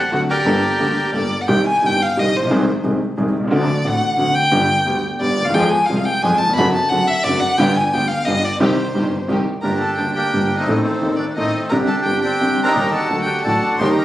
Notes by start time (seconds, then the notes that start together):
Already playing: C5 F#5
0.11 D2 D3 F#3 C4 D4 F#4 A4 F#5
0.29 G4 A#4 D5 G5
0.45 G1 G2 G3 A#3 D4 G4 A4
0.79 D2 D3 G3 A#3 D4 G4 A4
1.13 G1 G2 G3 A#3 D4 G4 A4 D5
1.41 F#5
1.48 C2 C3 D#3 G3 C4 G4 G5
1.67 G#5
1.82 G1 G2 D#3 G3 C4 G4
1.86 G5
2.03 F5
2.17 C2 C3 D#3 G3 C4 G4 D#5
2.34 A#1 C5
2.39 A1
2.43 A#1 B1
2.50 C2 C3 D#3 G#3 C4 G#4
2.83 C2 C3 D#3 G#3 C4 G#4
3.17 C2 C3 D#3 G#3 C4 G#4
3.34 C2
3.40 B1
3.44 C2 C#2
3.51 D2 D3 A3 C4 F#4 D5
3.84 A1 A2 D3 A3 C4 F#4 F#5
4.17 D2 D3 A3 C4 F#4 F#5
4.35 G5
4.51 G1 G2 D3 G3 B3 G4
4.86 D2 D3 G3 B3 G4
5.20 G1 G2 D3 G3 B3 G4 D5
5.38 D2 D#2
5.45 D#2 F5
5.51 E2 F2 F3 G#3 C4 G#4 G5
5.56 C4 F4 G#4
5.70 G#5
5.86 C2 C3 F3 G#3 C4 G#4 F5
5.91 C4 F4 G#4
6.05 G5
6.22 F2 F3 G#3 C4 F4 G#4 G#5
6.38 A5
6.45 D#2
6.50 E2
6.54 F#1 F2 D3 F#3 A3 B5
6.58 F#2 C4 D4 F#4
6.73 A5
6.89 F#1 F#2 D3 F#3 A3 C4 D4 F#4 F#5
7.07 E5
7.23 F#1 F#2 D3 F#3 A3 C4 D4 F#4 D5
7.40 F#5
7.58 G1 G2 D3 G3 B3 F4 G4 G5
7.76 G#5
7.93 D2 D3 G3 B3 F4 G4 G5
8.08 F5
8.25 G1 G2 D3 G3 B3 F4 G4 D#5
8.44 D5
8.60 C2 C3 D#3 G3 C4 D#4 G4 C5
8.94 G1 G2 D#3 G3 C4 D#4 G4
9.28 C2 C3 D#3 G3 C4 D#4 G4
9.62 G1 G2 D3 G3 A#3 D4 G4 A#4 A#5
9.78 A4 A5
9.95 D2 D3 G4 G5
9.99 D2 G3 A#3 G4
10.13 A#3 D4 G4 G5
10.33 G1 G2 D3 G3 A#3 G4
10.57 A3 C4 D#4 D#5
10.67 A1 A2 D#3 A3 C4 A4
10.82 D#3 A3 C4 C5
11.01 D#1 D#2 D#3 A3 C4 A4
11.16 D4 D5
11.35 A1 A2 D#3 A3 C4 D#4 A4 D#5
11.39 A3
11.69 C2 C3 D3 G3 C4 D4 G4 A#4 A#5
11.87 A4 A5
12.02 G1 G2 D3 G3 C4 G4 G5
12.21 C4 D4 G4 G5
12.41 C2 C3 D3 G3 C4 G4
12.63 A#4 A#5
12.67 D#4 G4
12.74 D#2 D#3 G3 A#3 G4
12.90 A4 A5
12.95 D4 F#4
13.10 D2 D3 F#3 A3 F#4
13.23 G4 G5
13.41 A1 A4 A5
13.46 A1 A2 D3 F#3 A3 D4 F#4
13.77 D#2 D#3 G3 A#3 C5 C6
13.82 A#3 D#4 G4
13.94 A#5
13.99 A#4